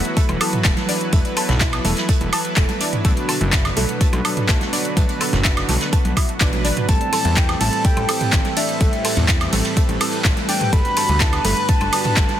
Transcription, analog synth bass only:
0, 0, Header, 1, 2, 480
1, 0, Start_track
1, 0, Tempo, 480000
1, 1128, Time_signature, 4, 2, 24, 8
1, 12399, End_track
2, 0, Start_track
2, 0, Title_t, "Analog synth bass"
2, 0, Program_c, 0, 38
2, 289, Note_on_c, 0, 28, 99
2, 373, Note_off_c, 0, 28, 0
2, 648, Note_on_c, 0, 28, 90
2, 734, Note_off_c, 0, 28, 0
2, 1128, Note_on_c, 0, 28, 101
2, 1214, Note_off_c, 0, 28, 0
2, 1489, Note_on_c, 0, 35, 86
2, 1792, Note_off_c, 0, 35, 0
2, 1846, Note_on_c, 0, 28, 88
2, 1933, Note_off_c, 0, 28, 0
2, 2208, Note_on_c, 0, 28, 99
2, 2292, Note_off_c, 0, 28, 0
2, 2568, Note_on_c, 0, 28, 91
2, 2654, Note_off_c, 0, 28, 0
2, 3048, Note_on_c, 0, 35, 105
2, 3134, Note_off_c, 0, 35, 0
2, 3408, Note_on_c, 0, 30, 88
2, 3711, Note_off_c, 0, 30, 0
2, 3767, Note_on_c, 0, 35, 86
2, 3853, Note_off_c, 0, 35, 0
2, 4129, Note_on_c, 0, 35, 101
2, 4212, Note_off_c, 0, 35, 0
2, 4488, Note_on_c, 0, 35, 91
2, 4573, Note_off_c, 0, 35, 0
2, 4967, Note_on_c, 0, 35, 99
2, 5053, Note_off_c, 0, 35, 0
2, 5329, Note_on_c, 0, 30, 87
2, 5632, Note_off_c, 0, 30, 0
2, 5687, Note_on_c, 0, 35, 84
2, 5773, Note_off_c, 0, 35, 0
2, 6049, Note_on_c, 0, 35, 95
2, 6133, Note_off_c, 0, 35, 0
2, 6408, Note_on_c, 0, 33, 98
2, 6712, Note_off_c, 0, 33, 0
2, 6888, Note_on_c, 0, 33, 98
2, 6974, Note_off_c, 0, 33, 0
2, 7249, Note_on_c, 0, 40, 88
2, 7552, Note_off_c, 0, 40, 0
2, 7608, Note_on_c, 0, 33, 90
2, 7694, Note_off_c, 0, 33, 0
2, 7969, Note_on_c, 0, 33, 101
2, 8053, Note_off_c, 0, 33, 0
2, 8327, Note_on_c, 0, 33, 91
2, 8413, Note_off_c, 0, 33, 0
2, 8807, Note_on_c, 0, 33, 101
2, 8893, Note_off_c, 0, 33, 0
2, 9168, Note_on_c, 0, 40, 86
2, 9471, Note_off_c, 0, 40, 0
2, 9528, Note_on_c, 0, 33, 89
2, 9614, Note_off_c, 0, 33, 0
2, 9889, Note_on_c, 0, 33, 100
2, 9972, Note_off_c, 0, 33, 0
2, 10247, Note_on_c, 0, 33, 94
2, 10333, Note_off_c, 0, 33, 0
2, 10728, Note_on_c, 0, 31, 99
2, 10814, Note_off_c, 0, 31, 0
2, 11089, Note_on_c, 0, 38, 86
2, 11392, Note_off_c, 0, 38, 0
2, 11447, Note_on_c, 0, 31, 88
2, 11533, Note_off_c, 0, 31, 0
2, 11809, Note_on_c, 0, 31, 99
2, 11893, Note_off_c, 0, 31, 0
2, 12168, Note_on_c, 0, 31, 94
2, 12254, Note_off_c, 0, 31, 0
2, 12399, End_track
0, 0, End_of_file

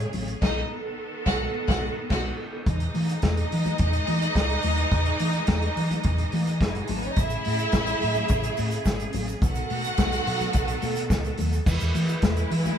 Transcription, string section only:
0, 0, Header, 1, 2, 480
1, 0, Start_track
1, 0, Key_signature, 4, "major"
1, 0, Tempo, 562324
1, 358, Time_signature, 4, 2, 24, 8
1, 10910, End_track
2, 0, Start_track
2, 0, Title_t, "String section"
2, 0, Program_c, 0, 48
2, 0, Note_on_c, 0, 49, 76
2, 0, Note_on_c, 0, 57, 73
2, 0, Note_on_c, 0, 68, 83
2, 340, Note_off_c, 0, 49, 0
2, 341, Note_off_c, 0, 68, 0
2, 342, Note_off_c, 0, 57, 0
2, 362, Note_on_c, 0, 51, 76
2, 363, Note_on_c, 0, 69, 91
2, 364, Note_on_c, 0, 59, 69
2, 2261, Note_off_c, 0, 51, 0
2, 2262, Note_off_c, 0, 59, 0
2, 2262, Note_off_c, 0, 69, 0
2, 2280, Note_on_c, 0, 63, 77
2, 2284, Note_on_c, 0, 52, 82
2, 2286, Note_on_c, 0, 56, 75
2, 6086, Note_off_c, 0, 63, 0
2, 6088, Note_off_c, 0, 52, 0
2, 6089, Note_off_c, 0, 56, 0
2, 6122, Note_on_c, 0, 57, 72
2, 6124, Note_on_c, 0, 49, 79
2, 6126, Note_on_c, 0, 68, 88
2, 8021, Note_off_c, 0, 57, 0
2, 8022, Note_off_c, 0, 49, 0
2, 8023, Note_off_c, 0, 68, 0
2, 8040, Note_on_c, 0, 69, 91
2, 8045, Note_on_c, 0, 59, 65
2, 8047, Note_on_c, 0, 51, 82
2, 9938, Note_off_c, 0, 69, 0
2, 9941, Note_off_c, 0, 59, 0
2, 9942, Note_off_c, 0, 51, 0
2, 9949, Note_on_c, 0, 52, 76
2, 9951, Note_on_c, 0, 56, 73
2, 9955, Note_on_c, 0, 64, 89
2, 10910, Note_off_c, 0, 52, 0
2, 10910, Note_off_c, 0, 56, 0
2, 10910, Note_off_c, 0, 64, 0
2, 10910, End_track
0, 0, End_of_file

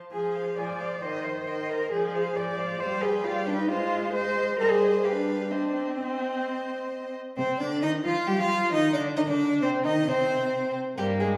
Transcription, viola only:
0, 0, Header, 1, 2, 480
1, 0, Start_track
1, 0, Key_signature, -3, "minor"
1, 0, Tempo, 447094
1, 129, Time_signature, 4, 2, 24, 8
1, 4926, Tempo, 464037
1, 7806, Tempo, 449102
1, 12081, End_track
2, 0, Start_track
2, 0, Title_t, "Viola"
2, 0, Program_c, 0, 41
2, 137, Note_on_c, 0, 53, 48
2, 565, Note_off_c, 0, 53, 0
2, 631, Note_on_c, 0, 53, 52
2, 1049, Note_off_c, 0, 53, 0
2, 1105, Note_on_c, 0, 51, 47
2, 1526, Note_off_c, 0, 51, 0
2, 1578, Note_on_c, 0, 51, 51
2, 2001, Note_off_c, 0, 51, 0
2, 2058, Note_on_c, 0, 53, 55
2, 2476, Note_off_c, 0, 53, 0
2, 2533, Note_on_c, 0, 53, 54
2, 2951, Note_off_c, 0, 53, 0
2, 3014, Note_on_c, 0, 55, 61
2, 3431, Note_off_c, 0, 55, 0
2, 3483, Note_on_c, 0, 55, 67
2, 3907, Note_off_c, 0, 55, 0
2, 3964, Note_on_c, 0, 56, 67
2, 4884, Note_off_c, 0, 56, 0
2, 4929, Note_on_c, 0, 55, 60
2, 5390, Note_off_c, 0, 55, 0
2, 5402, Note_on_c, 0, 55, 56
2, 5884, Note_on_c, 0, 60, 58
2, 5900, Note_off_c, 0, 55, 0
2, 7599, Note_off_c, 0, 60, 0
2, 7808, Note_on_c, 0, 60, 64
2, 8055, Note_on_c, 0, 62, 67
2, 8071, Note_off_c, 0, 60, 0
2, 8288, Note_on_c, 0, 63, 76
2, 8304, Note_off_c, 0, 62, 0
2, 8521, Note_off_c, 0, 63, 0
2, 8528, Note_on_c, 0, 65, 68
2, 8762, Note_off_c, 0, 65, 0
2, 8768, Note_on_c, 0, 67, 68
2, 8817, Note_off_c, 0, 67, 0
2, 8893, Note_on_c, 0, 65, 72
2, 9242, Note_off_c, 0, 65, 0
2, 9255, Note_on_c, 0, 63, 79
2, 9487, Note_off_c, 0, 63, 0
2, 9494, Note_on_c, 0, 62, 65
2, 9735, Note_on_c, 0, 63, 66
2, 9751, Note_off_c, 0, 62, 0
2, 9854, Note_on_c, 0, 62, 73
2, 9870, Note_off_c, 0, 63, 0
2, 10210, Note_on_c, 0, 60, 73
2, 10226, Note_off_c, 0, 62, 0
2, 10447, Note_on_c, 0, 63, 73
2, 10463, Note_off_c, 0, 60, 0
2, 10688, Note_off_c, 0, 63, 0
2, 10696, Note_on_c, 0, 60, 70
2, 11400, Note_off_c, 0, 60, 0
2, 11658, Note_on_c, 0, 55, 77
2, 11877, Note_off_c, 0, 55, 0
2, 11897, Note_on_c, 0, 56, 78
2, 12081, Note_off_c, 0, 56, 0
2, 12081, End_track
0, 0, End_of_file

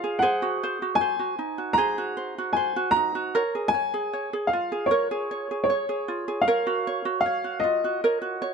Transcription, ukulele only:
0, 0, Header, 1, 2, 480
1, 0, Start_track
1, 0, Key_signature, -5, "major"
1, 0, Tempo, 780133
1, 132, Time_signature, 4, 2, 24, 8
1, 5253, End_track
2, 0, Start_track
2, 0, Title_t, "Ukulele"
2, 0, Program_c, 0, 24
2, 0, Note_on_c, 0, 65, 47
2, 0, Note_on_c, 0, 68, 44
2, 0, Note_on_c, 0, 73, 57
2, 23, Note_off_c, 0, 68, 0
2, 23, Note_on_c, 0, 68, 51
2, 132, Note_off_c, 0, 73, 0
2, 135, Note_off_c, 0, 68, 0
2, 137, Note_on_c, 0, 68, 77
2, 142, Note_on_c, 0, 72, 61
2, 182, Note_off_c, 0, 65, 0
2, 259, Note_on_c, 0, 66, 54
2, 377, Note_off_c, 0, 72, 0
2, 391, Note_on_c, 0, 72, 61
2, 496, Note_off_c, 0, 66, 0
2, 505, Note_on_c, 0, 66, 52
2, 615, Note_off_c, 0, 72, 0
2, 622, Note_on_c, 0, 72, 50
2, 727, Note_off_c, 0, 66, 0
2, 735, Note_on_c, 0, 66, 42
2, 851, Note_off_c, 0, 66, 0
2, 853, Note_on_c, 0, 63, 45
2, 970, Note_off_c, 0, 68, 0
2, 973, Note_on_c, 0, 66, 40
2, 1090, Note_off_c, 0, 72, 0
2, 1093, Note_on_c, 0, 68, 69
2, 1098, Note_on_c, 0, 72, 55
2, 1211, Note_off_c, 0, 66, 0
2, 1218, Note_on_c, 0, 66, 55
2, 1328, Note_off_c, 0, 72, 0
2, 1335, Note_on_c, 0, 72, 53
2, 1455, Note_off_c, 0, 66, 0
2, 1467, Note_on_c, 0, 66, 51
2, 1570, Note_off_c, 0, 72, 0
2, 1578, Note_on_c, 0, 72, 57
2, 1693, Note_off_c, 0, 66, 0
2, 1700, Note_on_c, 0, 66, 53
2, 1813, Note_off_c, 0, 63, 0
2, 1823, Note_on_c, 0, 63, 47
2, 1931, Note_off_c, 0, 66, 0
2, 1938, Note_on_c, 0, 66, 53
2, 2055, Note_off_c, 0, 72, 0
2, 2057, Note_off_c, 0, 68, 0
2, 2060, Note_on_c, 0, 70, 70
2, 2064, Note_on_c, 0, 73, 66
2, 2103, Note_off_c, 0, 66, 0
2, 2106, Note_off_c, 0, 63, 0
2, 2184, Note_on_c, 0, 68, 50
2, 2300, Note_off_c, 0, 68, 0
2, 2302, Note_off_c, 0, 73, 0
2, 2302, Note_on_c, 0, 73, 54
2, 2423, Note_on_c, 0, 68, 48
2, 2541, Note_off_c, 0, 70, 0
2, 2544, Note_off_c, 0, 73, 0
2, 2544, Note_on_c, 0, 73, 48
2, 2657, Note_off_c, 0, 68, 0
2, 2666, Note_on_c, 0, 68, 47
2, 2787, Note_off_c, 0, 68, 0
2, 2789, Note_on_c, 0, 65, 52
2, 2903, Note_on_c, 0, 68, 47
2, 3018, Note_off_c, 0, 68, 0
2, 3020, Note_on_c, 0, 70, 68
2, 3023, Note_off_c, 0, 73, 0
2, 3023, Note_on_c, 0, 73, 60
2, 3142, Note_off_c, 0, 70, 0
2, 3145, Note_on_c, 0, 68, 53
2, 3265, Note_off_c, 0, 73, 0
2, 3267, Note_on_c, 0, 73, 51
2, 3378, Note_off_c, 0, 68, 0
2, 3390, Note_on_c, 0, 68, 42
2, 3503, Note_off_c, 0, 73, 0
2, 3506, Note_on_c, 0, 73, 58
2, 3616, Note_off_c, 0, 68, 0
2, 3624, Note_on_c, 0, 68, 51
2, 3740, Note_off_c, 0, 65, 0
2, 3743, Note_on_c, 0, 65, 50
2, 3856, Note_off_c, 0, 68, 0
2, 3864, Note_on_c, 0, 68, 54
2, 3982, Note_off_c, 0, 68, 0
2, 3985, Note_on_c, 0, 70, 75
2, 3987, Note_off_c, 0, 73, 0
2, 3989, Note_on_c, 0, 73, 68
2, 4099, Note_off_c, 0, 65, 0
2, 4102, Note_on_c, 0, 66, 55
2, 4226, Note_off_c, 0, 73, 0
2, 4229, Note_on_c, 0, 73, 63
2, 4332, Note_off_c, 0, 66, 0
2, 4339, Note_on_c, 0, 66, 56
2, 4465, Note_off_c, 0, 73, 0
2, 4465, Note_on_c, 0, 73, 50
2, 4572, Note_off_c, 0, 66, 0
2, 4577, Note_off_c, 0, 70, 0
2, 4579, Note_on_c, 0, 66, 43
2, 4698, Note_on_c, 0, 65, 46
2, 4816, Note_off_c, 0, 66, 0
2, 4826, Note_on_c, 0, 66, 50
2, 4944, Note_off_c, 0, 66, 0
2, 4946, Note_on_c, 0, 70, 67
2, 4949, Note_off_c, 0, 73, 0
2, 4949, Note_on_c, 0, 73, 58
2, 5053, Note_off_c, 0, 70, 0
2, 5055, Note_on_c, 0, 66, 56
2, 5177, Note_off_c, 0, 73, 0
2, 5179, Note_on_c, 0, 73, 54
2, 5253, Note_off_c, 0, 65, 0
2, 5253, Note_off_c, 0, 66, 0
2, 5253, Note_off_c, 0, 73, 0
2, 5253, End_track
0, 0, End_of_file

